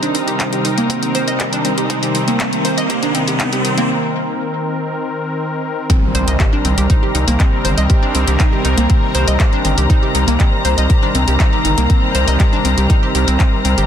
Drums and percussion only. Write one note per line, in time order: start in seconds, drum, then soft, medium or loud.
0.03 closed hi-hat soft
0.15 open hi-hat loud
0.28 closed hi-hat soft
0.40 kick loud
0.40 clap loud
0.40 closed hi-hat medium
0.53 closed hi-hat soft
0.65 open hi-hat medium
0.78 closed hi-hat soft
0.90 kick loud
0.90 closed hi-hat medium
1.03 closed hi-hat soft
1.15 open hi-hat loud
1.28 closed hi-hat soft
1.40 kick loud
1.40 clap loud
1.40 closed hi-hat medium
1.53 closed hi-hat soft
1.65 open hi-hat loud
1.78 closed hi-hat soft
1.90 kick loud
1.90 closed hi-hat medium
2.03 closed hi-hat soft
2.15 open hi-hat loud
2.28 closed hi-hat soft
2.40 kick loud
2.40 clap loud
2.40 closed hi-hat medium
2.53 closed hi-hat soft
2.65 open hi-hat medium
2.78 closed hi-hat soft
2.90 kick loud
2.90 closed hi-hat medium
3.03 closed hi-hat soft
3.15 open hi-hat loud
3.28 closed hi-hat soft
3.40 kick loud
3.40 clap loud
3.40 closed hi-hat medium
3.53 closed hi-hat soft
3.65 open hi-hat medium
3.78 closed hi-hat soft
5.90 kick loud
5.90 closed hi-hat medium
6.15 open hi-hat loud
6.28 closed hi-hat medium
6.40 kick loud
6.40 clap loud
6.40 closed hi-hat medium
6.65 open hi-hat medium
6.78 closed hi-hat medium
6.90 kick loud
6.90 closed hi-hat medium
7.15 open hi-hat loud
7.28 closed hi-hat medium
7.40 kick loud
7.40 clap loud
7.40 closed hi-hat medium
7.65 open hi-hat medium
7.78 closed hi-hat medium
7.90 kick loud
7.90 closed hi-hat medium
8.15 open hi-hat loud
8.28 closed hi-hat medium
8.40 kick loud
8.40 clap loud
8.40 closed hi-hat medium
8.65 open hi-hat medium
8.78 closed hi-hat medium
8.90 kick loud
8.90 closed hi-hat medium
9.15 open hi-hat loud
9.28 closed hi-hat medium
9.40 kick loud
9.40 clap loud
9.40 closed hi-hat medium
9.65 open hi-hat loud
9.78 closed hi-hat medium
9.90 kick loud
9.90 closed hi-hat medium
10.15 open hi-hat loud
10.28 closed hi-hat medium
10.40 kick loud
10.40 clap loud
10.40 closed hi-hat medium
10.65 open hi-hat medium
10.78 closed hi-hat medium
10.90 kick loud
10.90 closed hi-hat medium
11.15 open hi-hat loud
11.28 closed hi-hat medium
11.40 kick loud
11.40 clap loud
11.40 closed hi-hat medium
11.65 open hi-hat loud
11.78 closed hi-hat medium
11.90 kick loud
11.90 closed hi-hat medium
12.15 open hi-hat loud
12.28 closed hi-hat medium
12.40 kick loud
12.40 clap loud
12.40 closed hi-hat medium
12.65 open hi-hat loud
12.78 closed hi-hat medium
12.90 kick loud
12.90 closed hi-hat medium
13.15 open hi-hat loud
13.28 closed hi-hat medium
13.40 kick loud
13.40 clap loud
13.40 closed hi-hat medium
13.65 open hi-hat medium
13.78 closed hi-hat medium